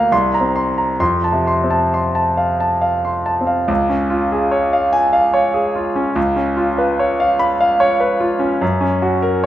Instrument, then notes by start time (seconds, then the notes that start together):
grand piano
Already playing: D2 A#3 F5 A#5
0.12 C2 C6
0.34 A#5
0.40 C4
0.56 C6
0.78 A#5
1.00 F2 C6
1.24 A5
1.32 C3
1.47 C6
1.64 C4
1.71 A5
1.94 C6
2.15 A5
2.37 F5
2.60 A5
2.81 F5
3.05 C6
3.26 A5
3.41 C4
3.47 F5
3.68 C#2
3.90 C#4
4.10 F4
4.32 G#4
4.51 C#5
4.73 F5
4.93 G#5
5.13 F5
5.34 C#5
5.54 G#4
5.76 F4
5.96 C#4
6.16 C#2
6.36 C#4
6.57 F4
6.78 B4
6.99 C#5
7.20 F5
7.39 B5
7.61 F5
7.80 C#5
8.00 B4
8.20 F4
8.39 C#4
8.61 F#2
8.81 C#4
9.02 F#4
9.22 A#4